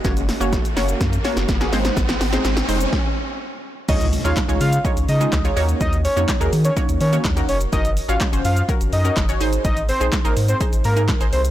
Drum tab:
CC |----------------|----------------|x---------------|----------------|
HH |xxoxxxoxxxoxxxox|xxoxxxox--------|xxoxxxoxxxoxxxox|xxoxxxoxxxoxxxox|
SH |xxxxxxxxxxxxxxxx|xxxxxxxx--------|xxxxxxxxxxxxxxxx|xxxxxxxxxxxxxxxx|
CP |----------------|----------------|----x-------x---|----x-------x---|
SD |o-o-o-o-o-oooooo|oooooo--o-------|----o-------o---|----o-------o---|
BD |o---o---o---o---|o-------o-------|o---o---o---o---|o---o---o---o---|

CC |----------------|----------------|
HH |xxoxxxoxxxoxxxox|xxoxxxoxxxoxxxox|
SH |xxxxxxxxxxxxxxxx|xxxxxxxxxxxxxxxx|
CP |----x-------x---|----x-------x---|
SD |----o-------o---|----o-------o---|
BD |o---o---o---o---|o---o---o---o---|